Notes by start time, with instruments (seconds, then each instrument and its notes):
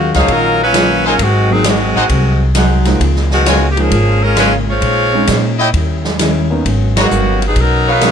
Already playing: saxophone section C#3 A#3 F4 F#4, steel-string acoustic guitar D#3 F#3 C#4 F4
0.13 upright bass C#2, trumpet section D#4 F#4 C#5 F5, snare, ride
0.17 saxophone section F3 A#3 C#4 G#4
0.28 upright bass A#1, steel-string acoustic guitar D#3 F#3 C#4 F4, kick, ride
0.32 saxophone section F#3 C#4 F4 A#4
0.63 saxophone section F#3 C#4 F4 B4
0.73 steel-string acoustic guitar D#3 F#3 C#4 F4, grand piano F#3 A#3 C#4 F4, snare, hi-hat pedal, ride
1.05 saxophone section F#3 C#4 F4 A#4, trumpet section D#4 G#4 C5 G#5
1.18 upright bass G#1, steel-string acoustic guitar G#2 F#3 C4 D#4, saxophone section G#3, kick, ride
1.22 saxophone section D#3 C4 F#4
1.51 grand piano F#3 A#3 C4 D#4, saxophone section F#3 C4 D#4 G#4
1.64 steel-string acoustic guitar G#2 F#3 C4 D#4, saxophone section D#3 G#3 C4, snare, hi-hat pedal, ride
1.68 saxophone section F#4
1.94 upright bass A1, trumpet section D#4 G#4 C5 F#5
2.09 upright bass C2, steel-string acoustic guitar G#2 F#3 C4 D#4, kick, ride
2.55 steel-string acoustic guitar G#2 F#3 C4 D#4, trumpet section D#4 G#4 C5 F#5, snare, hi-hat pedal, ride
2.85 grand piano F3 G#3 A#3 D#4, snare, ride
3.00 upright bass C#2, steel-string acoustic guitar C#3 G#3 A#3 F4, kick, ride
3.16 snare
3.31 saxophone section D#3 G#3 B3 F#4, snare
3.45 steel-string acoustic guitar C#3 G#3 A#3 F4, trumpet section F4 A#4 C#5 G#5, snare, hi-hat pedal, ride
3.71 saxophone section G4
3.76 grand piano F3 G#3 A#3 D#4, ride
3.80 saxophone section F3 A#3 C#4 G#4
3.90 upright bass G#1, steel-string acoustic guitar C#3 G#3 A#3 F4, kick, ride
4.23 saxophone section G#3 C#4 F4 A#4
4.36 steel-string acoustic guitar C#3 G#3, saxophone section G#3 C#4 F4 B4, trumpet section F4 A#4 C#5 F5, snare, hi-hat pedal, ride
4.40 steel-string acoustic guitar A#3 F4
4.70 saxophone section G#3 F4 C5 C#5
4.81 upright bass A#1, steel-string acoustic guitar A#2 G#3 C#4, kick, ride
4.85 steel-string acoustic guitar D#4
5.13 grand piano G#3 C4 C#4 D#4
5.27 upright bass A#2, steel-string acoustic guitar A#2 G#3 C#4 D#4, snare, hi-hat pedal, ride
5.59 trumpet section E4 C#5 D#5 G5
5.73 upright bass D#2, steel-string acoustic guitar D#3 G3 C#4 E4, kick, ride
6.05 snare
6.19 steel-string acoustic guitar D#3 G3 C#4 E4, snare, hi-hat pedal, ride
6.50 grand piano A#3 B3 C#4 D#4
6.64 upright bass G#1, steel-string acoustic guitar G#2 F#3 B3 C#4, kick, ride
6.96 trumpet section F#4 B4 C#5 A#5, snare, ride
7.01 saxophone section D#3 A#3 B3 F#4
7.09 upright bass G1, steel-string acoustic guitar G#2 F#3 B3 C#4, hi-hat pedal
7.42 ride
7.47 saxophone section F#3 B3 D#4 G#4
7.56 upright bass B1, steel-string acoustic guitar G#2 F#3 B3 C#4, kick, ride
7.60 saxophone section F#3 B3 D#4 A#4
7.87 trumpet section B3 F#4 C#5 F5
7.91 saxophone section F#3 D#4 A#4 B4
8.01 steel-string acoustic guitar G#2 F#3 B3 C#4, grand piano A#3 B3 C#4 F#4, snare, hi-hat pedal, ride